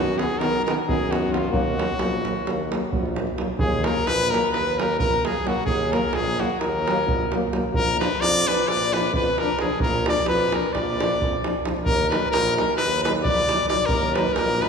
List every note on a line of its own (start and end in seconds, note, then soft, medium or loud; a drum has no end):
0.00 0.18 F#2 medium
0.00 0.20 F#4 medium
0.00 0.25 F#4 medium
0.08 davul high soft
0.17 0.26 D#3 soft
0.17 0.27 B3 medium
0.17 0.40 G#4 medium
0.17 davul high medium
0.24 0.44 G#4 medium
0.31 davul high soft
0.38 0.66 B1 medium
0.38 0.49 D#3 medium
0.38 0.50 B3 medium
0.38 0.65 A#4 medium
0.38 davul high medium
0.43 0.67 A#4 medium
0.55 davul high soft
0.65 0.74 D#3 medium
0.65 0.74 B3 medium
0.65 0.75 A#4 medium
0.65 0.77 A#4 medium
0.65 davul high medium
0.78 davul high soft
0.87 1.54 F#2 medium
0.87 0.97 D#3 medium
0.87 0.97 B3 medium
0.87 1.13 G#4 medium
0.87 1.18 G#4 medium
0.87 davul low medium
1.11 1.19 D#3 medium
1.11 1.19 B3 medium
1.11 1.34 F#4 medium
1.11 davul high medium
1.17 1.36 F#4 medium
1.30 1.39 D#3 medium
1.30 1.38 B3 medium
1.30 1.53 F4 medium
1.34 1.58 F4 medium
1.34 davul high medium
1.44 davul high soft
1.51 1.79 D#2 medium
1.51 1.62 F#3 medium
1.51 1.61 A#3 medium
1.51 3.18 F#4 medium
1.51 davul low medium
1.57 3.21 F#4 medium
1.77 1.86 F#3 medium
1.77 1.85 A#3 medium
1.77 davul high medium
1.99 2.26 A#1 medium
1.99 2.10 F#3 medium
1.99 2.10 A#3 medium
1.99 davul high medium
2.25 2.34 F#3 soft
2.25 2.34 A#3 medium
2.25 davul high medium
2.45 2.73 D#2 medium
2.45 2.56 F#3 medium
2.45 2.59 A#3 medium
2.45 davul high medium
2.60 davul high soft
2.71 2.80 F#3 soft
2.71 2.82 A#3 medium
2.71 davul high medium
2.91 3.02 F#3 medium
2.91 davul low medium
2.95 3.31 A#1 medium
2.95 3.06 A#3 medium
3.05 davul high soft
3.16 3.26 F#3 soft
3.16 3.27 A#3 medium
3.16 davul high medium
3.27 davul high soft
3.38 3.46 F#3 soft
3.38 3.47 A#3 soft
3.38 davul high medium
3.59 3.87 D#2 loud
3.59 3.86 G#4 medium
3.59 3.89 G#4 medium
3.59 davul low loud
3.72 davul high soft
3.84 3.93 F#3 soft
3.84 3.95 A#3 medium
3.84 4.08 A#4 loud
3.84 4.09 A#4 medium
3.84 davul high medium
3.95 davul high soft
4.07 4.34 A#1 medium
4.07 4.32 B4 loud
4.07 4.34 B4 loud
4.07 davul high medium
4.22 davul high soft
4.30 4.40 F#3 soft
4.30 4.41 A#3 medium
4.30 4.51 A#4 loud
4.30 4.54 A#4 medium
4.30 davul high medium
4.45 davul high soft
4.52 5.05 D#2 medium
4.52 4.80 B4 loud
4.52 4.84 B4 medium
4.52 davul high medium
4.78 4.88 F#3 medium
4.78 4.89 A#3 medium
4.78 4.98 A#4 medium
4.78 5.02 A#4 medium
4.78 davul high medium
4.91 davul high soft
4.99 5.27 A#4 loud
4.99 5.29 A#4 medium
4.99 davul low medium
5.03 5.16 A#1 medium
5.25 5.33 F#3 soft
5.25 5.36 A#3 medium
5.25 5.49 G#4 medium
5.25 5.48 G#4 medium
5.25 davul high medium
5.45 5.53 F#3 medium
5.45 5.55 A#3 medium
5.45 5.67 F#4 medium
5.45 5.65 F#4 medium
5.45 davul high medium
5.66 5.94 D#2 medium
5.66 5.94 G#4 loud
5.66 5.96 G#4 medium
5.66 davul low medium
5.80 davul high soft
5.92 6.01 F#3 medium
5.92 6.02 A#3 medium
5.92 6.16 A#4 medium
5.92 6.15 A#4 medium
5.92 davul high medium
6.03 davul high soft
6.13 6.40 A#1 medium
6.13 6.43 G#4 medium
6.13 6.42 G#4 loud
6.13 davul high medium
6.26 davul high soft
6.39 6.48 F#3 soft
6.39 6.50 A#3 medium
6.39 6.59 F#4 medium
6.39 6.60 F#4 medium
6.39 davul high medium
6.50 davul high soft
6.59 7.11 D#2 medium
6.59 7.48 A#4 medium
6.59 7.49 A#4 medium
6.59 davul high medium
6.87 6.96 F#3 medium
6.87 6.98 A#3 medium
6.87 davul high medium
6.99 davul high soft
7.08 7.23 A#1 medium
7.08 davul low medium
7.32 7.41 F#3 medium
7.32 7.43 A#3 medium
7.32 davul high medium
7.53 7.61 F#3 medium
7.53 7.63 A#3 medium
7.53 davul high medium
7.74 8.01 A#1 medium
7.74 7.98 A#4 loud
7.74 8.00 A#4 medium
7.74 davul low medium
7.87 davul high soft
8.00 8.08 F3 medium
8.00 8.10 D4 medium
8.00 8.22 B4 loud
8.00 8.26 B4 medium
8.00 davul high medium
8.13 davul high soft
8.21 8.48 F2 loud
8.21 8.49 D5 loud
8.21 8.53 D5 loud
8.21 davul high medium
8.36 davul high soft
8.46 8.55 F3 medium
8.46 8.69 B4 loud
8.46 davul high medium
8.50 8.58 D4 medium
8.50 8.72 B4 medium
8.58 davul high soft
8.68 9.16 A#1 medium
8.68 8.95 D5 loud
8.68 8.97 D5 medium
8.68 davul high medium
8.93 9.03 F3 medium
8.93 9.05 D4 medium
8.93 9.14 B4 medium
8.93 9.15 B4 medium
8.93 davul high medium
9.04 davul high soft
9.14 9.28 F2 medium
9.14 9.40 B4 medium
9.14 9.41 B4 medium
9.14 davul low medium
9.38 9.49 F3 medium
9.38 9.59 A#4 loud
9.38 9.60 A#4 medium
9.38 davul high medium
9.43 9.50 D4 medium
9.59 9.69 F3 medium
9.59 9.70 D4 medium
9.59 9.79 G#4 medium
9.59 9.80 G#4 medium
9.59 davul high medium
9.80 10.07 A#1 medium
9.80 10.05 A#4 medium
9.80 davul low loud
10.06 10.16 F3 medium
10.06 10.17 D4 medium
10.06 10.26 D5 medium
10.06 10.27 D5 medium
10.06 davul high medium
10.26 10.54 F2 medium
10.26 10.54 B4 medium
10.26 10.56 B4 medium
10.26 davul high medium
10.39 davul high soft
10.52 10.62 F3 soft
10.52 10.63 D4 medium
10.52 10.75 A#4 medium
10.52 10.74 A#4 medium
10.52 davul high medium
10.73 11.24 A#1 medium
10.73 11.65 D5 medium
10.73 11.66 D5 medium
10.73 davul high medium
10.73 davul low soft
11.00 11.10 F3 soft
11.00 11.09 D4 medium
11.00 davul high medium
11.11 davul high soft
11.22 11.35 F2 medium
11.22 davul low medium
11.33 davul high soft
11.44 11.54 F3 soft
11.44 11.53 D4 medium
11.44 davul high medium
11.65 11.74 F3 medium
11.65 11.74 D4 medium
11.65 davul high medium
11.77 davul high soft
11.83 12.09 A#4 loud
11.83 12.10 A#4 medium
11.83 davul low medium
11.88 12.14 D#2 medium
12.01 davul high soft
12.09 12.21 F#3 soft
12.09 12.20 D#4 medium
12.09 12.30 B4 medium
12.09 davul high medium
12.23 davul high soft
12.31 12.55 A#4 medium
12.31 12.56 A#4 loud
12.31 davul high medium
12.35 12.61 A#1 loud
12.47 davul high soft
12.55 12.68 F#3 soft
12.55 12.68 D#4 soft
12.55 12.76 A#4 medium
12.55 davul high medium
12.69 davul high soft
12.77 13.02 B4 loud
12.77 13.03 B4 medium
12.77 davul high medium
12.82 13.31 D#2 medium
13.03 13.15 F#3 medium
13.03 13.14 D#4 medium
13.03 13.13 B4 medium
13.03 13.14 B4 medium
13.03 davul high medium
13.16 davul high soft
13.24 13.67 D5 loud
13.24 13.67 D5 medium
13.24 davul low medium
13.29 13.42 A#1 medium
13.49 13.59 F#3 soft
13.49 13.59 D#4 medium
13.49 davul high medium
13.68 13.80 F#3 medium
13.68 13.78 D#4 medium
13.68 13.88 D5 loud
13.68 13.91 D5 medium
13.68 davul high medium
13.86 14.15 A#4 loud
13.86 14.17 A#4 loud
13.86 davul low medium
13.93 14.18 D#2 medium
14.02 davul high soft
14.14 14.25 F#3 medium
14.14 14.26 D#4 medium
14.14 14.35 B4 medium
14.14 14.38 B4 medium
14.14 davul high medium
14.25 davul high soft
14.33 14.63 A#4 loud
14.33 14.62 A#4 loud
14.33 davul high medium
14.41 14.66 A#1 medium
14.49 davul high soft
14.61 14.69 F#3 medium
14.61 14.69 D#4 medium
14.61 14.69 B4 medium
14.61 davul high medium